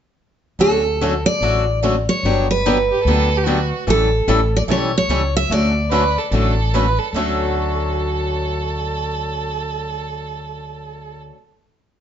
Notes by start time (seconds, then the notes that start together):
0.59 D2 D3 F#3 A3 C#4 F#4 A4
1.01 D3 F#3 A3 C#4 F#4 A4
1.26 D5
1.41 A1 D3 F#3 A3 C#4 F#4 A4
1.83 D3 F#3 A3 C#4 F#4 A4
2.09 C#5
2.23 G1 D3 F#3 B3 D4 G4
2.51 B4
2.66 D3 F#3 B3 D4 G4
2.91 G4
3.04 D2 D3 F#3 B3 A4
3.08 D4 G4
3.37 G4
3.43 D3 F#3 B3 D4 F#4 G4
3.87 A1 E3 G3 C#4 E4 A4
4.28 A1 E3 G3 C#4 E4 A4
4.56 D5
4.68 B1 E3 G3 C#4 E4 A4 C#5
4.98 C#5
5.08 C#2 E3 G3 C#4 E4 A4
5.37 E5
5.50 D2 D3 F#3 A3 C#4 F#4 A4 D5
5.91 D3 F#3 A3 C#4 F#4 A4 B4
6.18 A4
6.31 A1 D3 F#3 A3 C#4 F#4 A4
6.74 D3 F#3 A3 C#4 F#4 A4 B4
6.99 A4
7.13 D2 D3 F#3 A3 A4
7.17 C#4 F#4 A4